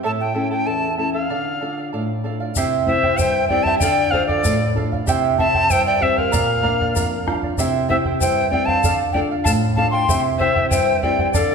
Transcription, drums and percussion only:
2.55 bombo low medium
2.55 shaker medium
2.88 bombo low soft
3.03 bombo low medium
3.18 bombo low medium
3.18 shaker medium
3.50 bombo low soft
3.65 bombo low soft
3.81 bombo low medium
3.81 shaker medium
4.13 bombo low medium
4.29 bombo low medium
4.44 bombo low medium
4.44 shaker medium
4.77 bombo low medium
4.93 bombo low soft
5.07 bombo low medium
5.07 shaker medium
5.39 bombo low medium
5.54 bombo low medium
5.70 bombo low medium
5.70 shaker medium
6.02 bombo low medium
6.18 bombo low medium
6.33 bombo low medium
6.33 shaker medium
6.65 bombo low medium
6.81 bombo low medium
6.96 bombo low medium
6.96 shaker medium
7.28 bombo rim soft
7.28 bombo low soft
7.43 bombo low soft
7.58 bombo low medium
7.58 shaker medium
7.90 bombo low medium
8.05 bombo low medium
8.21 bombo low medium
8.21 shaker loud
8.53 bombo low soft
8.68 bombo low medium
8.84 bombo low medium
8.84 shaker medium
9.15 bombo low medium
9.45 bombo low medium
9.45 shaker medium
9.77 bombo low medium
10.09 bombo low medium
10.09 shaker loud
10.40 bombo low medium
10.56 bombo low medium
10.71 bombo low medium
10.71 shaker medium
11.03 bombo low medium
11.19 bombo low medium
11.34 bombo low medium
11.34 shaker medium

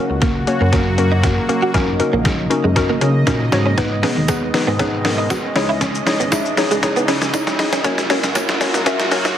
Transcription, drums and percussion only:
0.22 kick loud
0.22 snare medium
0.22 closed hi-hat medium
0.47 closed hi-hat medium
0.73 kick loud
0.73 snare medium
0.73 closed hi-hat medium
0.98 closed hi-hat medium
1.23 kick loud
1.23 snare medium
1.23 closed hi-hat medium
1.49 closed hi-hat medium
1.74 kick loud
1.74 snare medium
1.74 closed hi-hat medium
2.00 closed hi-hat medium
2.25 kick loud
2.25 snare medium
2.25 closed hi-hat medium
2.51 closed hi-hat medium
2.76 kick loud
2.76 snare medium
2.76 closed hi-hat medium
3.01 closed hi-hat medium
3.27 kick loud
3.27 snare medium
3.27 closed hi-hat medium
3.52 snare medium
3.52 closed hi-hat medium
3.78 kick loud
3.78 snare medium
3.78 closed hi-hat medium
4.03 snare medium
4.03 open hi-hat medium
4.28 kick loud
4.28 snare medium
4.28 closed hi-hat medium
4.28 tambourine medium
4.54 snare medium
4.54 open hi-hat medium
4.79 kick loud
4.79 snare medium
4.79 closed hi-hat medium
5.05 snare medium
5.05 open hi-hat medium
5.30 kick loud
5.30 snare medium
5.30 closed hi-hat medium
5.30 tambourine medium
5.56 snare medium
5.56 open hi-hat medium
5.81 kick loud
5.81 snare medium
5.81 closed hi-hat medium
5.81 shaker medium
5.95 shaker medium
6.07 snare loud
6.07 open hi-hat medium
6.07 shaker medium
6.20 shaker medium
6.32 kick loud
6.32 snare loud
6.32 closed hi-hat medium
6.32 tambourine medium
6.32 shaker medium
6.45 shaker medium
6.57 snare loud
6.57 open hi-hat medium
6.57 shaker medium
6.71 shaker medium
6.83 kick loud
6.83 snare loud
6.83 closed hi-hat medium
6.83 shaker medium
6.96 shaker medium
7.08 snare loud
7.08 open hi-hat medium
7.08 shaker medium
7.21 snare loud
7.21 shaker medium
7.34 kick loud
7.34 snare loud
7.34 closed hi-hat medium
7.34 tambourine medium
7.34 shaker medium
7.47 snare loud
7.47 shaker medium
7.59 snare loud
7.59 open hi-hat medium
7.59 shaker medium
7.72 snare loud
7.72 shaker medium
7.84 kick loud
7.84 snare loud
7.84 closed hi-hat medium
7.84 shaker medium
7.98 snare loud
7.98 shaker medium
8.10 snare loud
8.10 open hi-hat medium
8.10 shaker medium
8.23 snare loud
8.23 shaker medium
8.35 kick loud
8.35 snare loud
8.35 closed hi-hat medium
8.35 tambourine medium
8.35 shaker medium
8.49 snare loud
8.49 shaker medium
8.61 snare loud
8.61 open hi-hat medium
8.61 shaker medium
8.74 snare loud
8.74 shaker medium
8.86 kick loud
8.86 snare loud
8.86 closed hi-hat medium
8.86 shaker medium
8.99 snare loud
8.99 shaker medium
9.11 snare loud
9.11 open hi-hat medium
9.11 shaker medium
9.25 snare loud
9.25 shaker medium

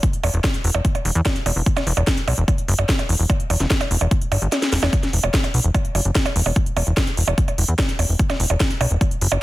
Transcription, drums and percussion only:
0.03 kick loud
0.03 closed hi-hat medium
0.13 closed hi-hat soft
0.23 open hi-hat loud
0.23 percussion blips medium
0.34 closed hi-hat soft
0.44 kick loud
0.44 snare loud
0.44 closed hi-hat medium
0.44 percussion blips soft
0.54 closed hi-hat soft
0.64 open hi-hat loud
0.75 percussion blips medium
0.85 kick loud
0.85 closed hi-hat loud
0.95 closed hi-hat soft
0.95 percussion blips soft
1.05 open hi-hat loud
1.15 closed hi-hat soft
1.26 kick loud
1.26 snare loud
1.26 closed hi-hat medium
1.26 percussion blips medium
1.36 closed hi-hat soft
1.46 open hi-hat loud
1.46 percussion blips soft
1.66 kick loud
1.66 closed hi-hat loud
1.77 snare soft
1.77 closed hi-hat soft
1.77 percussion blips medium
1.87 open hi-hat loud
1.97 closed hi-hat soft
1.97 percussion blips soft
2.07 kick loud
2.07 snare loud
2.07 closed hi-hat medium
2.17 closed hi-hat soft
2.28 open hi-hat loud
2.28 percussion blips medium
2.38 closed hi-hat soft
2.48 kick loud
2.48 closed hi-hat loud
2.48 percussion blips soft
2.58 closed hi-hat soft
2.68 open hi-hat loud
2.79 closed hi-hat soft
2.79 percussion blips medium
2.89 kick loud
2.89 snare loud
2.89 closed hi-hat medium
2.99 closed hi-hat soft
2.99 percussion blips soft
3.09 open hi-hat loud
3.30 kick loud
3.30 closed hi-hat loud
3.30 percussion blips medium
3.40 closed hi-hat soft
3.50 open hi-hat loud
3.50 percussion blips soft
3.60 snare soft
3.60 closed hi-hat soft
3.70 kick loud
3.70 snare loud
3.70 closed hi-hat loud
3.81 closed hi-hat soft
3.81 percussion blips medium
3.91 open hi-hat loud
4.01 closed hi-hat soft
4.01 percussion blips soft
4.11 kick loud
4.11 closed hi-hat loud
4.21 closed hi-hat soft
4.32 open hi-hat loud
4.32 percussion blips medium
4.42 closed hi-hat soft
4.52 snare medium
4.52 closed hi-hat loud
4.52 percussion blips soft
4.62 snare medium
4.62 closed hi-hat soft
4.72 snare medium
4.72 open hi-hat loud
4.83 snare medium
4.83 closed hi-hat soft
4.83 percussion blips medium
4.93 kick loud
4.93 closed hi-hat loud
4.93 percussion blips soft
5.03 snare soft
5.03 closed hi-hat soft
5.13 open hi-hat loud
5.24 closed hi-hat soft
5.24 percussion blips medium
5.34 kick loud
5.34 snare loud
5.34 closed hi-hat loud
5.44 closed hi-hat soft
5.44 percussion blips soft
5.54 open hi-hat loud
5.64 closed hi-hat soft
5.75 kick loud
5.75 closed hi-hat loud
5.75 percussion blips medium
5.85 closed hi-hat soft
5.95 open hi-hat loud
5.95 percussion blips soft
6.05 closed hi-hat soft
6.15 kick loud
6.15 snare loud
6.15 closed hi-hat loud
6.26 closed hi-hat soft
6.26 percussion blips medium
6.36 open hi-hat loud
6.46 percussion blips soft
6.56 kick loud
6.56 closed hi-hat medium
6.66 closed hi-hat soft
6.77 open hi-hat loud
6.77 percussion blips medium
6.87 closed hi-hat soft
6.97 kick loud
6.97 snare loud
6.97 closed hi-hat medium
6.97 percussion blips soft
7.07 closed hi-hat soft
7.17 open hi-hat loud
7.28 percussion blips medium
7.38 kick loud
7.38 closed hi-hat loud
7.48 closed hi-hat soft
7.48 percussion blips soft
7.58 open hi-hat loud
7.68 closed hi-hat soft
7.79 kick loud
7.79 snare loud
7.79 closed hi-hat medium
7.79 percussion blips medium
7.89 closed hi-hat soft
7.99 open hi-hat loud
7.99 percussion blips soft
8.19 kick loud
8.19 closed hi-hat medium
8.30 snare soft
8.30 closed hi-hat soft
8.30 percussion blips medium
8.40 open hi-hat loud
8.50 percussion blips soft
8.60 kick loud
8.60 snare loud
8.60 closed hi-hat medium
8.70 closed hi-hat soft
8.81 open hi-hat loud
8.81 percussion blips medium
8.91 closed hi-hat soft
9.01 kick loud
9.01 closed hi-hat medium
9.01 percussion blips soft
9.11 closed hi-hat soft
9.21 open hi-hat loud
9.32 percussion blips medium

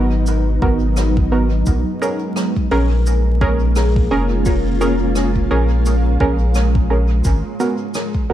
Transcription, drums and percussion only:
0.27 cabasa medium
0.62 kick loud
0.97 cross-stick medium
0.97 cabasa medium
1.17 kick loud
1.66 kick loud
1.66 cabasa medium
2.02 cabasa soft
2.36 cross-stick medium
2.36 cabasa medium
2.57 kick medium
3.06 cabasa medium
3.41 kick loud
3.76 cross-stick medium
3.76 cabasa medium
3.96 kick loud
4.46 kick loud
4.46 cabasa medium
4.81 cabasa soft
5.15 cross-stick medium
5.15 cabasa medium
5.36 kick medium
5.86 cabasa medium
6.20 kick loud
6.55 cross-stick medium
6.55 cabasa medium
6.75 kick loud
7.24 kick loud
7.24 cabasa medium
7.60 cabasa soft
7.94 cross-stick medium
7.94 cabasa medium
8.15 kick medium

